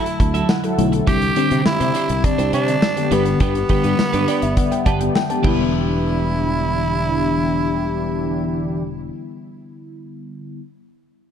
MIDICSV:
0, 0, Header, 1, 9, 480
1, 0, Start_track
1, 0, Key_signature, 1, "minor"
1, 0, Tempo, 582524
1, 887, Time_signature, 4, 2, 24, 8
1, 9322, End_track
2, 0, Start_track
2, 0, Title_t, "Clean electric guitar"
2, 0, Program_c, 0, 27
2, 281, Note_on_c, 0, 76, 66
2, 290, Note_on_c, 0, 69, 62
2, 297, Note_on_c, 0, 66, 52
2, 392, Note_off_c, 0, 76, 0
2, 395, Note_off_c, 0, 66, 0
2, 396, Note_off_c, 0, 69, 0
2, 882, Note_on_c, 0, 62, 82
2, 891, Note_on_c, 0, 67, 86
2, 898, Note_on_c, 0, 72, 89
2, 994, Note_off_c, 0, 72, 0
2, 1005, Note_off_c, 0, 67, 0
2, 1022, Note_off_c, 0, 62, 0
2, 1123, Note_on_c, 0, 62, 66
2, 1131, Note_on_c, 0, 67, 70
2, 1139, Note_on_c, 0, 72, 74
2, 1233, Note_off_c, 0, 62, 0
2, 1234, Note_off_c, 0, 72, 0
2, 1236, Note_off_c, 0, 67, 0
2, 1244, Note_on_c, 0, 72, 73
2, 1251, Note_on_c, 0, 67, 61
2, 1259, Note_on_c, 0, 62, 61
2, 1353, Note_off_c, 0, 72, 0
2, 1354, Note_off_c, 0, 62, 0
2, 1357, Note_off_c, 0, 67, 0
2, 1483, Note_on_c, 0, 72, 67
2, 1490, Note_on_c, 0, 67, 56
2, 1497, Note_on_c, 0, 62, 52
2, 1593, Note_off_c, 0, 72, 0
2, 1594, Note_off_c, 0, 62, 0
2, 1596, Note_off_c, 0, 67, 0
2, 1604, Note_on_c, 0, 62, 84
2, 1612, Note_on_c, 0, 67, 83
2, 1616, Note_on_c, 0, 72, 90
2, 1715, Note_off_c, 0, 72, 0
2, 1725, Note_off_c, 0, 67, 0
2, 1743, Note_off_c, 0, 62, 0
2, 1964, Note_on_c, 0, 72, 72
2, 1972, Note_on_c, 0, 67, 61
2, 1979, Note_on_c, 0, 62, 55
2, 2073, Note_off_c, 0, 72, 0
2, 2075, Note_off_c, 0, 62, 0
2, 2077, Note_off_c, 0, 67, 0
2, 2084, Note_on_c, 0, 62, 81
2, 2093, Note_on_c, 0, 67, 84
2, 2097, Note_on_c, 0, 72, 82
2, 2194, Note_off_c, 0, 72, 0
2, 2203, Note_off_c, 0, 67, 0
2, 2223, Note_off_c, 0, 62, 0
2, 2563, Note_on_c, 0, 62, 82
2, 2571, Note_on_c, 0, 67, 86
2, 2578, Note_on_c, 0, 71, 95
2, 2674, Note_off_c, 0, 71, 0
2, 2683, Note_off_c, 0, 67, 0
2, 2702, Note_off_c, 0, 62, 0
2, 2805, Note_on_c, 0, 62, 82
2, 2813, Note_on_c, 0, 67, 86
2, 2818, Note_on_c, 0, 71, 87
2, 2917, Note_off_c, 0, 71, 0
2, 2928, Note_off_c, 0, 67, 0
2, 2943, Note_off_c, 0, 62, 0
2, 3043, Note_on_c, 0, 62, 60
2, 3050, Note_on_c, 0, 67, 67
2, 3056, Note_on_c, 0, 71, 71
2, 3151, Note_off_c, 0, 71, 0
2, 3152, Note_off_c, 0, 62, 0
2, 3156, Note_off_c, 0, 67, 0
2, 3161, Note_on_c, 0, 71, 67
2, 3170, Note_on_c, 0, 67, 61
2, 3177, Note_on_c, 0, 62, 55
2, 3271, Note_off_c, 0, 71, 0
2, 3274, Note_off_c, 0, 62, 0
2, 3276, Note_off_c, 0, 67, 0
2, 3403, Note_on_c, 0, 71, 63
2, 3409, Note_on_c, 0, 67, 55
2, 3418, Note_on_c, 0, 62, 51
2, 3513, Note_off_c, 0, 62, 0
2, 3513, Note_off_c, 0, 71, 0
2, 3516, Note_off_c, 0, 67, 0
2, 3523, Note_on_c, 0, 62, 80
2, 3531, Note_on_c, 0, 67, 80
2, 3536, Note_on_c, 0, 71, 88
2, 3636, Note_off_c, 0, 71, 0
2, 3645, Note_off_c, 0, 67, 0
2, 3662, Note_off_c, 0, 62, 0
2, 4005, Note_on_c, 0, 62, 76
2, 4012, Note_on_c, 0, 67, 75
2, 4018, Note_on_c, 0, 71, 93
2, 4118, Note_off_c, 0, 71, 0
2, 4128, Note_off_c, 0, 67, 0
2, 4143, Note_off_c, 0, 62, 0
2, 4476, Note_on_c, 0, 62, 76
2, 4500, Note_on_c, 0, 67, 88
2, 4517, Note_on_c, 0, 71, 84
2, 7517, Note_off_c, 0, 62, 0
2, 7540, Note_off_c, 0, 67, 0
2, 7558, Note_off_c, 0, 71, 0
2, 9322, End_track
3, 0, Start_track
3, 0, Title_t, "Tenor saxophone"
3, 0, Program_c, 1, 66
3, 0, Note_on_c, 1, 64, 107
3, 650, Note_off_c, 1, 64, 0
3, 888, Note_on_c, 1, 67, 115
3, 1335, Note_off_c, 1, 67, 0
3, 1369, Note_on_c, 1, 64, 106
3, 1853, Note_on_c, 1, 62, 99
3, 1866, Note_off_c, 1, 64, 0
3, 2086, Note_off_c, 1, 62, 0
3, 2091, Note_on_c, 1, 62, 109
3, 2576, Note_on_c, 1, 59, 88
3, 2588, Note_off_c, 1, 62, 0
3, 2806, Note_off_c, 1, 59, 0
3, 2811, Note_on_c, 1, 59, 100
3, 4216, Note_off_c, 1, 59, 0
3, 4495, Note_on_c, 1, 64, 90
3, 7277, Note_off_c, 1, 64, 0
3, 9322, End_track
4, 0, Start_track
4, 0, Title_t, "Analog polysynth"
4, 0, Program_c, 2, 90
4, 284, Note_on_c, 2, 54, 105
4, 284, Note_on_c, 2, 64, 97
4, 285, Note_on_c, 2, 69, 111
4, 388, Note_off_c, 2, 54, 0
4, 388, Note_off_c, 2, 64, 0
4, 388, Note_off_c, 2, 69, 0
4, 526, Note_on_c, 2, 69, 104
4, 528, Note_on_c, 2, 54, 100
4, 528, Note_on_c, 2, 64, 100
4, 869, Note_off_c, 2, 64, 0
4, 869, Note_off_c, 2, 69, 0
4, 870, Note_off_c, 2, 54, 0
4, 1489, Note_on_c, 2, 60, 83
4, 1489, Note_on_c, 2, 67, 95
4, 1490, Note_on_c, 2, 50, 81
4, 1590, Note_off_c, 2, 60, 0
4, 1590, Note_off_c, 2, 67, 0
4, 1591, Note_off_c, 2, 50, 0
4, 1849, Note_on_c, 2, 50, 85
4, 1849, Note_on_c, 2, 67, 94
4, 1850, Note_on_c, 2, 60, 83
4, 1950, Note_off_c, 2, 50, 0
4, 1950, Note_off_c, 2, 67, 0
4, 1951, Note_off_c, 2, 60, 0
4, 2209, Note_on_c, 2, 60, 96
4, 2210, Note_on_c, 2, 67, 115
4, 2211, Note_on_c, 2, 50, 97
4, 2310, Note_off_c, 2, 60, 0
4, 2311, Note_off_c, 2, 50, 0
4, 2311, Note_off_c, 2, 67, 0
4, 2449, Note_on_c, 2, 67, 110
4, 2450, Note_on_c, 2, 50, 105
4, 2450, Note_on_c, 2, 59, 96
4, 2790, Note_off_c, 2, 67, 0
4, 2791, Note_off_c, 2, 50, 0
4, 2791, Note_off_c, 2, 59, 0
4, 3410, Note_on_c, 2, 67, 87
4, 3411, Note_on_c, 2, 50, 84
4, 3412, Note_on_c, 2, 59, 84
4, 3511, Note_off_c, 2, 50, 0
4, 3511, Note_off_c, 2, 67, 0
4, 3512, Note_off_c, 2, 59, 0
4, 3771, Note_on_c, 2, 50, 87
4, 3772, Note_on_c, 2, 67, 97
4, 3773, Note_on_c, 2, 59, 84
4, 3871, Note_off_c, 2, 50, 0
4, 3872, Note_off_c, 2, 59, 0
4, 3872, Note_off_c, 2, 67, 0
4, 4130, Note_on_c, 2, 50, 105
4, 4131, Note_on_c, 2, 59, 100
4, 4131, Note_on_c, 2, 67, 114
4, 4231, Note_off_c, 2, 50, 0
4, 4231, Note_off_c, 2, 59, 0
4, 4231, Note_off_c, 2, 67, 0
4, 4368, Note_on_c, 2, 50, 95
4, 4368, Note_on_c, 2, 67, 108
4, 4369, Note_on_c, 2, 59, 100
4, 4478, Note_off_c, 2, 67, 0
4, 4482, Note_off_c, 2, 50, 0
4, 4482, Note_off_c, 2, 59, 0
4, 4488, Note_on_c, 2, 62, 91
4, 4488, Note_on_c, 2, 67, 102
4, 4489, Note_on_c, 2, 52, 92
4, 7274, Note_off_c, 2, 52, 0
4, 7274, Note_off_c, 2, 62, 0
4, 7274, Note_off_c, 2, 67, 0
4, 9322, End_track
5, 0, Start_track
5, 0, Title_t, "FM electric piano"
5, 0, Program_c, 3, 5
5, 0, Control_c, 3, 64, 127
5, 0, Note_on_c, 3, 50, 74
5, 0, Note_on_c, 3, 54, 64
5, 0, Note_on_c, 3, 57, 69
5, 0, Note_on_c, 3, 64, 79
5, 0, Note_on_c, 3, 76, 74
5, 0, Note_on_c, 3, 81, 73
5, 373, Note_off_c, 3, 81, 0
5, 408, Note_on_c, 3, 78, 71
5, 641, Note_off_c, 3, 50, 0
5, 641, Note_on_c, 3, 50, 81
5, 644, Note_off_c, 3, 54, 0
5, 644, Note_on_c, 3, 54, 70
5, 646, Note_off_c, 3, 57, 0
5, 646, Note_on_c, 3, 57, 72
5, 650, Note_off_c, 3, 64, 0
5, 650, Note_on_c, 3, 64, 87
5, 811, Note_off_c, 3, 50, 0
5, 813, Note_off_c, 3, 54, 0
5, 814, Note_off_c, 3, 57, 0
5, 816, Note_off_c, 3, 64, 0
5, 855, Note_off_c, 3, 78, 0
5, 883, Note_on_c, 3, 50, 72
5, 887, Note_on_c, 3, 55, 66
5, 889, Note_on_c, 3, 60, 70
5, 893, Note_on_c, 3, 67, 79
5, 898, Control_c, 3, 64, 0
5, 900, Note_off_c, 3, 76, 0
5, 1026, Control_c, 3, 64, 127
5, 1052, Note_off_c, 3, 50, 0
5, 1054, Note_off_c, 3, 55, 0
5, 1055, Note_off_c, 3, 60, 0
5, 1057, Note_off_c, 3, 67, 0
5, 1121, Note_on_c, 3, 50, 76
5, 1122, Note_on_c, 3, 55, 65
5, 1126, Note_on_c, 3, 60, 71
5, 1130, Note_on_c, 3, 67, 84
5, 1793, Note_off_c, 3, 50, 0
5, 1793, Note_off_c, 3, 55, 0
5, 1795, Note_off_c, 3, 60, 0
5, 1797, Note_off_c, 3, 67, 0
5, 2567, Note_on_c, 3, 50, 76
5, 2569, Note_on_c, 3, 55, 68
5, 2572, Note_on_c, 3, 59, 70
5, 2575, Note_on_c, 3, 67, 82
5, 2578, Control_c, 3, 64, 0
5, 2707, Control_c, 3, 64, 127
5, 2951, Note_off_c, 3, 50, 0
5, 2952, Note_off_c, 3, 55, 0
5, 2954, Note_off_c, 3, 59, 0
5, 2955, Note_off_c, 3, 67, 0
5, 3044, Note_on_c, 3, 50, 75
5, 3048, Note_on_c, 3, 55, 69
5, 3051, Note_on_c, 3, 59, 68
5, 3054, Note_on_c, 3, 67, 80
5, 3530, Note_on_c, 3, 74, 73
5, 3640, Note_off_c, 3, 74, 0
5, 3648, Note_on_c, 3, 76, 67
5, 3714, Note_off_c, 3, 50, 0
5, 3716, Note_off_c, 3, 55, 0
5, 3718, Note_off_c, 3, 59, 0
5, 3719, Note_off_c, 3, 67, 0
5, 3759, Note_off_c, 3, 76, 0
5, 3769, Note_on_c, 3, 78, 69
5, 3880, Note_off_c, 3, 78, 0
5, 3885, Note_on_c, 3, 79, 69
5, 3998, Note_off_c, 3, 79, 0
5, 4006, Note_on_c, 3, 81, 70
5, 4118, Note_off_c, 3, 81, 0
5, 4124, Note_on_c, 3, 79, 73
5, 4237, Note_off_c, 3, 79, 0
5, 4248, Note_on_c, 3, 79, 70
5, 4359, Note_off_c, 3, 79, 0
5, 4370, Note_on_c, 3, 81, 68
5, 4468, Note_on_c, 3, 50, 77
5, 4480, Note_off_c, 3, 81, 0
5, 4482, Note_on_c, 3, 55, 69
5, 4495, Note_on_c, 3, 59, 73
5, 4497, Control_c, 3, 64, 0
5, 4507, Note_on_c, 3, 64, 86
5, 4592, Control_c, 3, 64, 127
5, 4737, Control_c, 3, 64, 0
5, 4890, Control_c, 3, 64, 127
5, 7476, Note_off_c, 3, 50, 0
5, 7490, Note_off_c, 3, 55, 0
5, 7503, Note_off_c, 3, 59, 0
5, 7515, Note_off_c, 3, 64, 0
5, 8717, Control_c, 3, 64, 0
5, 9322, End_track
6, 0, Start_track
6, 0, Title_t, "Fretless electric bass"
6, 0, Program_c, 4, 35
6, 166, Note_on_c, 4, 38, 93
6, 347, Note_off_c, 4, 38, 0
6, 646, Note_on_c, 4, 35, 90
6, 827, Note_off_c, 4, 35, 0
6, 886, Note_on_c, 4, 36, 100
6, 1067, Note_off_c, 4, 36, 0
6, 1248, Note_on_c, 4, 48, 100
6, 1338, Note_off_c, 4, 48, 0
6, 1487, Note_on_c, 4, 48, 97
6, 1577, Note_off_c, 4, 48, 0
6, 1729, Note_on_c, 4, 36, 83
6, 1818, Note_off_c, 4, 36, 0
6, 1967, Note_on_c, 4, 36, 105
6, 2057, Note_off_c, 4, 36, 0
6, 2086, Note_on_c, 4, 48, 96
6, 2267, Note_off_c, 4, 48, 0
6, 2566, Note_on_c, 4, 31, 92
6, 2747, Note_off_c, 4, 31, 0
6, 2807, Note_on_c, 4, 31, 107
6, 2987, Note_off_c, 4, 31, 0
6, 3167, Note_on_c, 4, 43, 92
6, 3257, Note_off_c, 4, 43, 0
6, 3409, Note_on_c, 4, 43, 86
6, 3499, Note_off_c, 4, 43, 0
6, 3649, Note_on_c, 4, 31, 82
6, 3738, Note_off_c, 4, 31, 0
6, 4008, Note_on_c, 4, 31, 98
6, 4188, Note_off_c, 4, 31, 0
6, 4489, Note_on_c, 4, 28, 91
6, 7496, Note_off_c, 4, 28, 0
6, 9322, End_track
7, 0, Start_track
7, 0, Title_t, "Muted clean electric guitar strokes"
7, 40, Note_on_c, 9, 29, 47
7, 122, Note_off_c, 9, 29, 0
7, 165, Note_on_c, 9, 29, 43
7, 247, Note_off_c, 9, 29, 0
7, 524, Note_on_c, 9, 29, 51
7, 607, Note_off_c, 9, 29, 0
7, 760, Note_on_c, 9, 29, 43
7, 843, Note_off_c, 9, 29, 0
7, 1004, Note_on_c, 9, 29, 46
7, 1087, Note_off_c, 9, 29, 0
7, 1364, Note_on_c, 9, 29, 41
7, 1446, Note_off_c, 9, 29, 0
7, 1725, Note_on_c, 9, 29, 56
7, 1807, Note_off_c, 9, 29, 0
7, 1846, Note_on_c, 9, 29, 48
7, 1928, Note_off_c, 9, 29, 0
7, 2204, Note_on_c, 9, 29, 53
7, 2287, Note_off_c, 9, 29, 0
7, 2322, Note_on_c, 9, 29, 45
7, 2405, Note_off_c, 9, 29, 0
7, 2443, Note_on_c, 9, 29, 43
7, 2526, Note_off_c, 9, 29, 0
7, 2684, Note_on_c, 9, 29, 42
7, 2766, Note_off_c, 9, 29, 0
7, 2927, Note_on_c, 9, 29, 39
7, 3009, Note_off_c, 9, 29, 0
7, 3284, Note_on_c, 9, 29, 35
7, 3367, Note_off_c, 9, 29, 0
7, 3646, Note_on_c, 9, 29, 48
7, 3728, Note_off_c, 9, 29, 0
7, 3765, Note_on_c, 9, 29, 44
7, 3848, Note_off_c, 9, 29, 0
7, 3886, Note_on_c, 9, 29, 45
7, 3969, Note_off_c, 9, 29, 0
7, 4128, Note_on_c, 9, 29, 56
7, 4211, Note_off_c, 9, 29, 0
7, 4247, Note_on_c, 9, 29, 37
7, 4330, Note_off_c, 9, 29, 0
7, 4366, Note_on_c, 9, 29, 49
7, 4448, Note_off_c, 9, 29, 0
7, 9322, End_track
8, 0, Start_track
8, 0, Title_t, "Muted fretless electric bass strokes"
8, 1368, Note_on_c, 9, 29, 49
8, 1450, Note_off_c, 9, 29, 0
8, 3290, Note_on_c, 9, 29, 45
8, 3372, Note_off_c, 9, 29, 0
8, 9322, End_track
9, 0, Start_track
9, 0, Title_t, "Drums"
9, 49, Note_on_c, 9, 42, 55
9, 131, Note_off_c, 9, 42, 0
9, 165, Note_on_c, 9, 36, 86
9, 165, Note_on_c, 9, 42, 79
9, 247, Note_off_c, 9, 36, 0
9, 248, Note_off_c, 9, 42, 0
9, 285, Note_on_c, 9, 42, 58
9, 368, Note_off_c, 9, 42, 0
9, 402, Note_on_c, 9, 54, 61
9, 404, Note_on_c, 9, 38, 112
9, 484, Note_off_c, 9, 54, 0
9, 486, Note_off_c, 9, 38, 0
9, 526, Note_on_c, 9, 42, 45
9, 609, Note_off_c, 9, 42, 0
9, 648, Note_on_c, 9, 42, 66
9, 730, Note_off_c, 9, 42, 0
9, 765, Note_on_c, 9, 42, 46
9, 847, Note_off_c, 9, 42, 0
9, 884, Note_on_c, 9, 42, 80
9, 886, Note_on_c, 9, 36, 102
9, 967, Note_off_c, 9, 42, 0
9, 968, Note_off_c, 9, 36, 0
9, 1004, Note_on_c, 9, 42, 49
9, 1086, Note_off_c, 9, 42, 0
9, 1122, Note_on_c, 9, 42, 75
9, 1204, Note_off_c, 9, 42, 0
9, 1244, Note_on_c, 9, 42, 50
9, 1327, Note_off_c, 9, 42, 0
9, 1365, Note_on_c, 9, 38, 109
9, 1365, Note_on_c, 9, 54, 69
9, 1447, Note_off_c, 9, 38, 0
9, 1447, Note_off_c, 9, 54, 0
9, 1488, Note_on_c, 9, 42, 54
9, 1570, Note_off_c, 9, 42, 0
9, 1605, Note_on_c, 9, 42, 76
9, 1687, Note_off_c, 9, 42, 0
9, 1724, Note_on_c, 9, 42, 54
9, 1807, Note_off_c, 9, 42, 0
9, 1846, Note_on_c, 9, 42, 93
9, 1847, Note_on_c, 9, 36, 85
9, 1928, Note_off_c, 9, 42, 0
9, 1929, Note_off_c, 9, 36, 0
9, 1968, Note_on_c, 9, 42, 55
9, 2051, Note_off_c, 9, 42, 0
9, 2086, Note_on_c, 9, 42, 73
9, 2168, Note_off_c, 9, 42, 0
9, 2208, Note_on_c, 9, 42, 56
9, 2291, Note_off_c, 9, 42, 0
9, 2325, Note_on_c, 9, 54, 62
9, 2327, Note_on_c, 9, 38, 106
9, 2407, Note_off_c, 9, 54, 0
9, 2409, Note_off_c, 9, 38, 0
9, 2447, Note_on_c, 9, 42, 47
9, 2530, Note_off_c, 9, 42, 0
9, 2567, Note_on_c, 9, 42, 64
9, 2649, Note_off_c, 9, 42, 0
9, 2683, Note_on_c, 9, 42, 47
9, 2765, Note_off_c, 9, 42, 0
9, 2803, Note_on_c, 9, 42, 80
9, 2806, Note_on_c, 9, 36, 103
9, 2886, Note_off_c, 9, 42, 0
9, 2888, Note_off_c, 9, 36, 0
9, 2927, Note_on_c, 9, 42, 50
9, 3009, Note_off_c, 9, 42, 0
9, 3042, Note_on_c, 9, 42, 71
9, 3047, Note_on_c, 9, 36, 83
9, 3125, Note_off_c, 9, 42, 0
9, 3129, Note_off_c, 9, 36, 0
9, 3164, Note_on_c, 9, 42, 49
9, 3247, Note_off_c, 9, 42, 0
9, 3287, Note_on_c, 9, 38, 99
9, 3287, Note_on_c, 9, 54, 66
9, 3369, Note_off_c, 9, 38, 0
9, 3369, Note_off_c, 9, 54, 0
9, 3406, Note_on_c, 9, 42, 54
9, 3489, Note_off_c, 9, 42, 0
9, 3526, Note_on_c, 9, 42, 76
9, 3609, Note_off_c, 9, 42, 0
9, 3644, Note_on_c, 9, 42, 54
9, 3727, Note_off_c, 9, 42, 0
9, 3765, Note_on_c, 9, 42, 100
9, 3767, Note_on_c, 9, 36, 86
9, 3848, Note_off_c, 9, 42, 0
9, 3849, Note_off_c, 9, 36, 0
9, 3888, Note_on_c, 9, 42, 55
9, 3971, Note_off_c, 9, 42, 0
9, 4005, Note_on_c, 9, 42, 77
9, 4006, Note_on_c, 9, 36, 88
9, 4088, Note_off_c, 9, 36, 0
9, 4088, Note_off_c, 9, 42, 0
9, 4126, Note_on_c, 9, 42, 55
9, 4208, Note_off_c, 9, 42, 0
9, 4246, Note_on_c, 9, 54, 63
9, 4248, Note_on_c, 9, 38, 107
9, 4328, Note_off_c, 9, 54, 0
9, 4330, Note_off_c, 9, 38, 0
9, 4367, Note_on_c, 9, 42, 44
9, 4450, Note_off_c, 9, 42, 0
9, 4484, Note_on_c, 9, 49, 82
9, 4486, Note_on_c, 9, 36, 103
9, 4567, Note_off_c, 9, 49, 0
9, 4569, Note_off_c, 9, 36, 0
9, 9322, End_track
0, 0, End_of_file